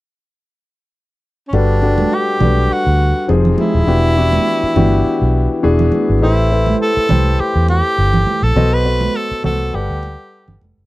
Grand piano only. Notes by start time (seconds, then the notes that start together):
1.53 G3 D4 F#4 A4 B4
1.82 G3 D4 F#4 A4 B4
2.40 G3 D4 F#4 A4 B4
3.28 F3 C4 D#4 G4 G#4
3.87 E3 B3 D4 F#4 G4
4.16 E3 B3 D4 F#4 G4
4.76 E3 B3 D4 F#4 G4
5.63 E3 B3 D4 F#4 G#4
6.22 A3 E4 G4 B4 C5
6.51 A3 E4 G4 B4 C5
7.09 A3 E4 G4 B4 C5
8.56 B3 F#4 A4 C5 D#5
8.85 B3 F#4 A4 C5 D#5
9.43 B3 F#4 A4 C5 F#5
9.73 G3 G4 A4 B4 F#5